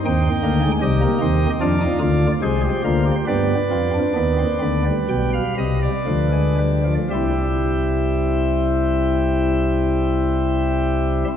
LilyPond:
<<
  \new Staff \with { instrumentName = "Pipe organ" } { \time 4/4 \key g \phrygian \tempo 4 = 64 << { g''4 ees''4 d''4 c''4 | d''2 g''16 f''16 ees''16 d''4~ d''16 | <c' e' e''>1 | } \\ { ees'4 g'4 f'4 aes'16 g'16 f'16 g'16 | b'1 | g'1 | } >> }
  \new Staff \with { instrumentName = "Pipe organ" } { \clef bass \time 4/4 \key g \phrygian << { c'8 bes16 aes16 g16 bes16 c'8 d'16 ees'16 f'8 aes8 bes8 | b8 c'16 d'16 b16 c'16 b16 g4~ g16 f16 aes16 g16 f16 | g1 | } \\ { <ees, ees>8 <d, d>8 <c, c>8 <ees, ees>8 <f, f>8 <d, d>8 <c, c>8 <d, d>8 | <g, g>8 <f, f>8 <ees, ees>8 <d, d>8 <b,, b,>8 <c, c>8 <d, d>4 | <c, c>1 | } >> }
>>